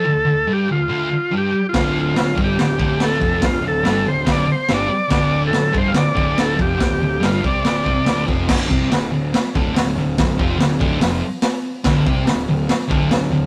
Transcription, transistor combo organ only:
\new Staff \with { instrumentName = "Transistor combo organ" } { \time 4/4 \key d \minor \tempo 4 = 142 a'4 g'8 f'4. g'8. f'16~ | f'8 f'4 g'4. a'4 | f'8 a'4 c''8 d''8 c''8 d''4 | d''8. a'16~ \tuplet 3/2 { a'8. c''8 f''16 } d''4 a'8 g'8~ |
g'4 f'8 d''2 r8 | r1 | r1 | r1 | }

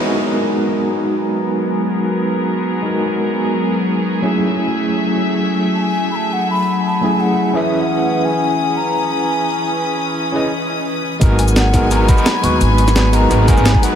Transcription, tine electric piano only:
\new Staff \with { instrumentName = "Tine electric piano" } { \time 4/4 \key gis \minor \tempo 4 = 172 <gis b dis' fis' ais' b'>1~ | <gis b dis' fis' ais' b'>1 | <gis b dis' fis' ais'>1 | <fis a cis' e' gis'>1~ |
<fis a cis' e' gis'>1 | <fis a cis' e' gis'>4. <cis' e' gis' b' e''>2~ <cis' e' gis' b' e''>8~ | <cis' e' gis' b' e''>1~ | <cis' e' gis' b' e''>4. <cis' e' gis' b' dis''>8 r2 |
<gis b dis' fis' ais'>4. <gis b dis' fis' ais'>8 <gis b dis' fis' ais'>8 <gis b dis' fis' ais'>16 <gis b dis' fis' ais'>16 r8 <gis b dis' fis' b'>8~ | <gis b dis' fis' b'>4. <gis b dis' fis' ais'>8 <gis b dis' fis' ais'>8 <gis b dis' fis' ais'>16 <gis b dis' fis' ais'>16 r8 <gis b dis' fis' b'>8 | }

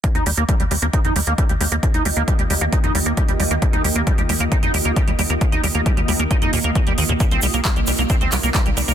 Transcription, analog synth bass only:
\new Staff \with { instrumentName = "Analog synth bass" } { \clef bass \time 4/4 \key ees \major \tempo 4 = 134 r16 ees,16 ees,16 ees,16 r16 ees,16 ees,16 ees,16 r16 f,16 ees,16 ees,16 r16 ees,16 ees,16 ees,16 | r16 ees,16 ees,16 ees,16 r16 ees,16 ees,16 ees,16 r16 f,16 ees,16 ees,16 r16 ees,16 ees,16 ees,16 | r16 ees,16 ees,16 ees,16 r16 ees,16 ees,16 ees,16 r16 f,16 ees,16 ees,16 r16 ees,16 ees,16 ees,16 | r16 ees,16 ees,16 ees,16 r16 ees,16 ees,16 ees,16 r16 f,16 ees,16 ees,16 r16 ees,16 ees,16 ees,16 |
r16 c,16 c,16 c,16 r16 c,16 c,16 c,16 r16 d,16 c,16 c,16 r16 c,16 c,16 c,16 | }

